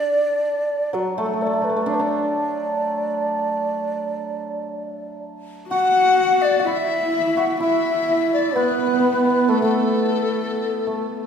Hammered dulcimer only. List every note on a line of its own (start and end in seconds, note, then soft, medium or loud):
0.00 1.86 D4 medium
0.93 5.84 F#3 medium
1.18 1.25 A3 medium
1.26 1.33 A3 soft
1.33 1.40 A3 soft
1.41 1.46 A3 soft
1.46 1.53 A3 soft
1.53 1.61 A3 soft
1.62 1.69 A3 soft
1.70 1.76 A3 soft
1.76 6.20 A3 medium
1.86 1.99 D4 medium
1.99 5.73 D4 medium
5.71 6.59 F#4 medium
6.60 7.36 F#4 medium
6.67 7.60 E4 medium
7.37 10.61 F#4 medium
7.60 11.08 E4 medium
8.56 8.63 B3 medium
8.63 8.71 B3 soft
8.71 8.78 B3 soft
8.79 8.86 B3 soft
8.87 8.93 B3 soft
8.94 8.99 B3 soft
8.99 9.06 B3 soft
9.06 9.12 B3 soft
9.13 9.25 B3 medium
9.25 11.27 B3 medium
9.49 9.62 A3 medium
9.62 10.86 A3 medium
10.87 11.27 A3 soft